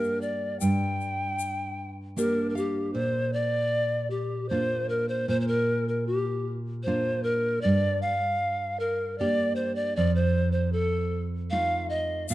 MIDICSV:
0, 0, Header, 1, 4, 480
1, 0, Start_track
1, 0, Tempo, 777202
1, 385, Time_signature, 3, 2, 24, 8
1, 7622, End_track
2, 0, Start_track
2, 0, Title_t, "Pan flute"
2, 0, Program_c, 0, 75
2, 0, Note_on_c, 0, 70, 90
2, 132, Note_on_c, 0, 74, 85
2, 142, Note_off_c, 0, 70, 0
2, 367, Note_on_c, 0, 79, 110
2, 377, Note_off_c, 0, 74, 0
2, 1181, Note_off_c, 0, 79, 0
2, 1343, Note_on_c, 0, 70, 94
2, 1541, Note_off_c, 0, 70, 0
2, 1541, Note_on_c, 0, 70, 61
2, 1586, Note_on_c, 0, 67, 84
2, 1595, Note_off_c, 0, 70, 0
2, 1810, Note_on_c, 0, 72, 107
2, 1820, Note_off_c, 0, 67, 0
2, 2058, Note_on_c, 0, 74, 105
2, 2067, Note_off_c, 0, 72, 0
2, 2531, Note_off_c, 0, 74, 0
2, 2535, Note_on_c, 0, 67, 82
2, 2771, Note_on_c, 0, 72, 98
2, 2781, Note_off_c, 0, 67, 0
2, 3021, Note_on_c, 0, 70, 94
2, 3030, Note_off_c, 0, 72, 0
2, 3139, Note_on_c, 0, 72, 92
2, 3149, Note_off_c, 0, 70, 0
2, 3262, Note_off_c, 0, 72, 0
2, 3265, Note_on_c, 0, 72, 105
2, 3335, Note_off_c, 0, 72, 0
2, 3339, Note_on_c, 0, 72, 60
2, 3382, Note_on_c, 0, 70, 94
2, 3391, Note_off_c, 0, 72, 0
2, 3627, Note_off_c, 0, 70, 0
2, 3633, Note_on_c, 0, 70, 70
2, 3744, Note_off_c, 0, 70, 0
2, 3749, Note_on_c, 0, 67, 88
2, 4046, Note_off_c, 0, 67, 0
2, 4220, Note_on_c, 0, 72, 100
2, 4468, Note_on_c, 0, 70, 98
2, 4477, Note_off_c, 0, 72, 0
2, 4702, Note_on_c, 0, 74, 117
2, 4712, Note_off_c, 0, 70, 0
2, 4946, Note_off_c, 0, 74, 0
2, 4952, Note_on_c, 0, 77, 114
2, 5433, Note_on_c, 0, 70, 93
2, 5442, Note_off_c, 0, 77, 0
2, 5670, Note_on_c, 0, 74, 110
2, 5680, Note_off_c, 0, 70, 0
2, 5899, Note_off_c, 0, 74, 0
2, 5902, Note_on_c, 0, 72, 97
2, 6017, Note_off_c, 0, 72, 0
2, 6025, Note_on_c, 0, 74, 100
2, 6138, Note_off_c, 0, 74, 0
2, 6152, Note_on_c, 0, 74, 106
2, 6262, Note_off_c, 0, 74, 0
2, 6270, Note_on_c, 0, 72, 99
2, 6492, Note_off_c, 0, 72, 0
2, 6497, Note_on_c, 0, 72, 83
2, 6623, Note_on_c, 0, 69, 96
2, 6632, Note_off_c, 0, 72, 0
2, 6943, Note_off_c, 0, 69, 0
2, 7104, Note_on_c, 0, 77, 114
2, 7328, Note_off_c, 0, 77, 0
2, 7347, Note_on_c, 0, 75, 104
2, 7590, Note_on_c, 0, 77, 117
2, 7599, Note_off_c, 0, 75, 0
2, 7622, Note_off_c, 0, 77, 0
2, 7622, End_track
3, 0, Start_track
3, 0, Title_t, "Nylon-string guitar"
3, 0, Program_c, 1, 24
3, 0, Note_on_c, 1, 43, 73
3, 0, Note_on_c, 1, 58, 50
3, 0, Note_on_c, 1, 62, 48
3, 0, Note_on_c, 1, 67, 61
3, 360, Note_off_c, 1, 43, 0
3, 370, Note_off_c, 1, 58, 0
3, 370, Note_off_c, 1, 62, 0
3, 371, Note_off_c, 1, 67, 0
3, 379, Note_on_c, 1, 43, 67
3, 1337, Note_on_c, 1, 58, 51
3, 1342, Note_on_c, 1, 62, 48
3, 1342, Note_on_c, 1, 70, 74
3, 1346, Note_on_c, 1, 67, 56
3, 1568, Note_off_c, 1, 70, 0
3, 1575, Note_on_c, 1, 77, 71
3, 1803, Note_off_c, 1, 43, 0
3, 1806, Note_off_c, 1, 77, 0
3, 1810, Note_off_c, 1, 58, 0
3, 1812, Note_off_c, 1, 62, 0
3, 1814, Note_off_c, 1, 67, 0
3, 1820, Note_on_c, 1, 46, 70
3, 2786, Note_on_c, 1, 58, 59
3, 2786, Note_on_c, 1, 62, 52
3, 2794, Note_on_c, 1, 65, 61
3, 3242, Note_off_c, 1, 46, 0
3, 3254, Note_off_c, 1, 62, 0
3, 3255, Note_off_c, 1, 58, 0
3, 3258, Note_off_c, 1, 65, 0
3, 3263, Note_on_c, 1, 46, 69
3, 4240, Note_on_c, 1, 58, 56
3, 4246, Note_on_c, 1, 65, 60
3, 4247, Note_on_c, 1, 62, 50
3, 4682, Note_off_c, 1, 46, 0
3, 4701, Note_off_c, 1, 58, 0
3, 4704, Note_off_c, 1, 65, 0
3, 4705, Note_off_c, 1, 62, 0
3, 4723, Note_on_c, 1, 43, 79
3, 5684, Note_on_c, 1, 62, 50
3, 5685, Note_on_c, 1, 58, 52
3, 5686, Note_on_c, 1, 67, 66
3, 6130, Note_off_c, 1, 43, 0
3, 6142, Note_off_c, 1, 62, 0
3, 6143, Note_off_c, 1, 58, 0
3, 6143, Note_off_c, 1, 67, 0
3, 6160, Note_on_c, 1, 41, 78
3, 7116, Note_on_c, 1, 57, 57
3, 7119, Note_on_c, 1, 63, 49
3, 7119, Note_on_c, 1, 65, 54
3, 7566, Note_off_c, 1, 41, 0
3, 7576, Note_off_c, 1, 57, 0
3, 7577, Note_off_c, 1, 63, 0
3, 7577, Note_off_c, 1, 65, 0
3, 7597, Note_on_c, 1, 46, 73
3, 7622, Note_off_c, 1, 46, 0
3, 7622, End_track
4, 0, Start_track
4, 0, Title_t, "Drums"
4, 23, Note_on_c, 9, 82, 25
4, 84, Note_off_c, 9, 82, 0
4, 137, Note_on_c, 9, 82, 26
4, 199, Note_off_c, 9, 82, 0
4, 376, Note_on_c, 9, 82, 86
4, 438, Note_off_c, 9, 82, 0
4, 622, Note_on_c, 9, 82, 27
4, 683, Note_off_c, 9, 82, 0
4, 860, Note_on_c, 9, 82, 90
4, 922, Note_off_c, 9, 82, 0
4, 1346, Note_on_c, 9, 82, 94
4, 1408, Note_off_c, 9, 82, 0
4, 1588, Note_on_c, 9, 82, 28
4, 1649, Note_off_c, 9, 82, 0
4, 7589, Note_on_c, 9, 82, 98
4, 7622, Note_off_c, 9, 82, 0
4, 7622, End_track
0, 0, End_of_file